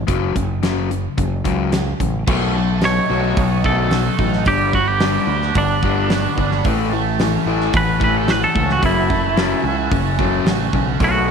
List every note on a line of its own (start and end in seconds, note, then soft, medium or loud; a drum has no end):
0.07 0.32 F#1 medium
0.07 0.34 F#2 medium
0.07 0.34 C#3 medium
0.07 0.34 F#3 medium
0.07 kick loud
0.07 closed hi-hat medium
0.35 1.06 F#1 medium
0.35 0.60 F#2 medium
0.35 0.60 C#3 medium
0.35 kick medium
0.35 closed hi-hat medium
0.63 0.89 F#2 medium
0.63 0.89 C#3 medium
0.63 0.89 F#3 medium
0.63 snare medium
0.63 closed hi-hat medium
0.90 1.15 F#2 medium
0.90 1.15 C#3 medium
0.90 closed hi-hat medium
1.18 1.41 F#1 medium
1.18 1.42 F#2 medium
1.18 1.43 C#3 medium
1.18 kick medium
1.18 closed hi-hat medium
1.44 1.93 C#2 medium
1.44 1.71 F#2 medium
1.44 1.71 C#3 medium
1.44 1.71 F#3 medium
1.44 kick medium
1.44 closed hi-hat medium
1.72 1.97 F#2 medium
1.72 1.97 C#3 medium
1.72 snare loud
1.72 closed hi-hat medium
2.00 2.24 A1 medium
2.00 2.25 F#2 medium
2.00 2.25 C#3 medium
2.00 kick medium
2.00 closed hi-hat medium
2.27 2.98 B1 loud
2.27 2.53 B2 medium
2.27 3.64 B2 medium
2.27 2.54 F#3 medium
2.27 2.54 A3 medium
2.27 4.44 F#4 medium
2.27 4.44 B4 medium
2.27 4.44 D#5 medium
2.27 4.44 A5 medium
2.27 kick loud
2.27 crash loud
2.54 2.80 B2 medium
2.54 2.80 F#3 medium
2.54 3.63 A3 medium
2.81 3.07 B2 medium
2.81 3.07 F#3 medium
2.81 3.36 D#4 medium
2.81 3.63 C#5 medium
2.81 snare loud
2.81 open hi-hat medium
3.09 3.33 B1 medium
3.09 3.35 B2 medium
3.09 3.36 F#3 loud
3.09 3.36 A3 medium
3.09 3.91 F#4 medium
3.37 4.08 B1 loud
3.37 3.62 B2 medium
3.37 3.62 F#3 medium
3.37 4.17 D#4 medium
3.37 kick loud
3.37 open hi-hat medium
3.64 3.90 B2 medium
3.64 3.90 F#3 medium
3.64 4.46 A3 medium
3.64 3.91 A3 medium
3.64 4.45 A4 medium
3.64 kick medium
3.91 4.16 B2 medium
3.91 4.16 F#3 medium
3.91 4.49 F#4 medium
3.91 snare loud
3.91 open hi-hat medium
4.18 4.42 A1 medium
4.18 4.44 B2 medium
4.18 4.44 F#3 medium
4.18 4.46 D#4 medium
4.18 kick medium
4.33 snare soft
4.45 5.17 G1 medium
4.45 4.72 G2 medium
4.45 4.73 D3 medium
4.45 5.83 G3 medium
4.45 4.73 G3 medium
4.45 4.73 G4 medium
4.45 6.62 D5 medium
4.45 6.62 F#5 medium
4.45 6.63 B5 medium
4.45 kick loud
4.45 open hi-hat medium
4.73 4.99 G2 medium
4.73 4.99 D3 medium
4.73 5.82 B3 medium
4.73 4.89 F#4 medium
4.73 kick medium
4.89 5.54 G4 medium
5.00 5.27 G2 medium
5.00 5.27 D3 loud
5.00 5.27 G3 medium
5.00 5.54 D4 medium
5.00 snare loud
5.00 open hi-hat soft
5.27 5.51 D2 medium
5.27 5.53 G2 medium
5.27 5.53 D3 medium
5.27 6.10 F#4 medium
5.42 snare soft
5.54 6.26 G1 medium
5.54 5.80 G2 medium
5.54 5.81 D3 medium
5.54 6.37 D4 medium
5.54 6.63 D4 medium
5.54 kick loud
5.54 open hi-hat soft
5.83 6.09 G2 medium
5.83 6.09 D3 medium
5.83 6.09 G3 medium
5.83 6.65 B3 medium
5.83 kick medium
6.10 6.35 G2 medium
6.10 6.35 D3 medium
6.10 7.47 F#4 medium
6.10 snare loud
6.10 open hi-hat medium
6.37 6.61 G1 medium
6.37 6.62 G2 medium
6.37 6.62 D3 medium
6.37 6.65 D4 medium
6.37 kick medium
6.51 snare soft
6.64 7.35 A1 loud
6.64 6.90 A2 medium
6.64 8.02 A2 medium
6.64 6.91 E3 medium
6.64 6.91 A3 medium
6.64 10.97 F#4 medium
6.64 8.80 C#5 medium
6.64 10.97 E5 medium
6.64 10.96 A5 medium
6.64 kick loud
6.64 open hi-hat medium
6.92 7.17 A2 medium
6.92 7.17 E3 medium
6.92 8.01 A3 medium
7.19 7.44 A2 medium
7.19 7.45 E3 medium
7.19 7.72 C#4 medium
7.19 snare loud
7.19 open hi-hat soft
7.46 7.70 A1 medium
7.46 7.73 A2 medium
7.46 7.73 E3 medium
7.46 7.73 A3 medium
7.46 8.29 F#4 medium
7.61 snare soft
7.73 8.44 A1 loud
7.73 7.98 A2 medium
7.73 7.99 E3 medium
7.73 8.55 C#4 medium
7.73 8.02 B4 medium
7.73 kick loud
7.73 open hi-hat medium
8.00 8.26 A2 medium
8.00 8.26 E3 medium
8.00 8.26 A3 loud
8.00 9.09 A3 medium
8.00 kick medium
8.04 8.17 B4 medium
8.17 8.30 A4 medium
8.28 8.52 A2 medium
8.28 8.52 E3 medium
8.28 9.64 F#4 medium
8.28 8.43 B4 medium
8.28 snare loud
8.28 open hi-hat medium
8.44 8.69 A4 medium
8.55 8.79 C#2 medium
8.55 8.80 A2 medium
8.55 8.80 E3 medium
8.55 8.83 C#4 medium
8.55 kick medium
8.69 8.84 F#4 medium
8.69 snare soft
8.81 9.53 F#1 medium
8.81 9.08 F#2 medium
8.81 10.19 F#2 medium
8.81 9.08 C#3 medium
8.81 9.08 F#3 medium
8.81 10.98 C#5 medium
8.81 kick loud
8.81 open hi-hat medium
8.86 9.90 E4 medium
9.10 9.34 F#2 medium
9.10 9.34 C#3 medium
9.10 10.17 A3 medium
9.10 kick medium
9.37 9.63 F#2 medium
9.37 9.63 C#3 medium
9.37 9.63 F#3 medium
9.37 9.90 C#4 medium
9.37 snare loud
9.37 open hi-hat soft
9.64 9.87 C#2 medium
9.64 9.89 F#2 medium
9.64 9.89 C#3 medium
9.64 10.46 F#4 medium
9.91 10.38 F#1 medium
9.91 10.16 F#2 medium
9.91 10.16 C#3 medium
9.91 10.72 C#4 medium
9.91 kick loud
9.91 open hi-hat medium
10.19 10.44 F#2 medium
10.19 10.45 C#3 medium
10.19 10.45 F#3 loud
10.19 11.00 A3 medium
10.19 kick medium
10.45 10.70 A1 medium
10.45 10.71 F#2 medium
10.45 10.71 C#3 medium
10.45 11.31 F#4 medium
10.45 snare loud
10.45 open hi-hat soft
10.73 10.98 B1 medium
10.73 10.98 F#2 medium
10.73 10.99 C#3 medium
10.73 11.01 C#4 medium
10.73 kick medium
11.00 11.31 B1 loud
11.00 11.26 B2 medium
11.00 11.31 B2 medium
11.00 11.26 F#3 medium
11.00 11.26 A3 medium
11.00 11.31 A4 medium
11.00 11.31 D#5 medium
11.00 11.31 F#5 medium
11.00 11.31 B5 medium
11.00 kick loud
11.00 open hi-hat soft
11.04 11.29 F#4 medium
11.28 11.31 B2 medium
11.28 11.31 A3 medium